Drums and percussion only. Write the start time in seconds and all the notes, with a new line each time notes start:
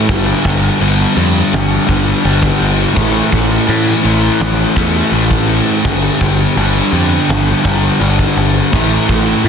0.09 kick, crash
0.45 kick, crash
0.81 crash
1.00 snare
1.17 crash
1.53 snare, crash
1.89 kick, crash
2.25 crash
2.43 kick
2.61 crash
2.97 kick, crash
3.32 kick, crash
3.68 crash
3.88 snare
4.04 crash
4.40 snare, crash
4.76 kick, crash
5.13 crash
5.31 kick
5.49 crash
5.85 kick, crash
6.21 kick, crash
6.57 crash
6.76 snare
6.93 crash
7.29 snare, crash
7.65 kick, crash
8.01 crash
8.19 kick
8.37 crash
8.73 kick, crash
9.09 kick, crash
9.45 crash